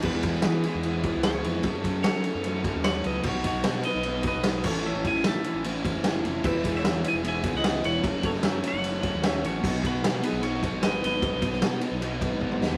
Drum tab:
CC |x---------------|----------------|x-------------x-|----------------|
RD |--x-x-x-x-x-x-x-|x-x-x-x-x-x-x-x-|--x-x-x-x-x-x---|--x-x-x-x-x-x-x-|
SD |---oo-------o---|----o-------o---|----o-------o---|---oo-------o---|
T2 |----------------|----------------|----------------|----------------|
FT |----------------|----------------|----------------|----------------|
BD |o-o-------o-----|o-o-------o-----|o-o-------o---o-|--o-------o-----|

CC |x---------------|----------------|x---------------|----------------|
RD |--x-x-x-x-x-x-x-|x-x-x-x-x-x-x-x-|--x-x-x-x-x-x-x-|x-x-x-x-x-x-----|
SD |---oo-------o---|---oo-------o---|----o-------o---|---oo---------o-|
T2 |----------------|----------------|----------------|-------------o--|
FT |----------------|----------------|----------------|---------------o|
BD |o-o-------o-----|o-o-------o-----|o-o-------o-----|o-o-------o-o---|